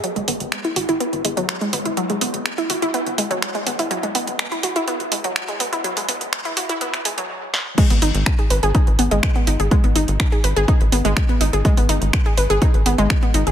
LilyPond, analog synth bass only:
\new Staff \with { instrumentName = "Analog synth bass" } { \clef bass \time 4/4 \key gis \minor \tempo 4 = 124 r16 gis,,16 gis,,16 gis,,16 r8 gis,,16 gis,,16 r16 gis,,16 gis,,16 gis,,16 r8 gis,,16 gis,,16 | r16 gis,,16 gis,,16 gis,,16 r8 gis,,16 gis,,16 r16 gis,,16 gis,,16 gis,,16 r8 gis,,16 gis,,16 | r16 gis,,16 gis,,16 gis,,16 r8 gis,,16 gis,,16 r16 gis,,16 gis,,16 gis,,16 r8 gis,,16 gis,,16 | r16 gis,,16 gis,,16 gis,,16 r8 gis,,16 gis,,16 r16 gis,,16 gis,,16 gis,,16 r4 |
r16 gis,,16 gis,,16 gis,,16 r8 gis,,16 gis,,16 r16 gis,,16 gis,,16 gis,,16 r8 gis,,16 gis,,16 | r16 gis,,16 gis,,16 gis,,16 r8 gis,,16 gis,,16 r16 gis,,16 gis,,16 gis,,16 r8 gis,,16 gis,,16 | r16 gis,,16 gis,,16 gis,,16 r8 gis,,16 gis,,16 r16 gis,,16 gis,,16 gis,,16 r8 gis,,16 gis,,16 | }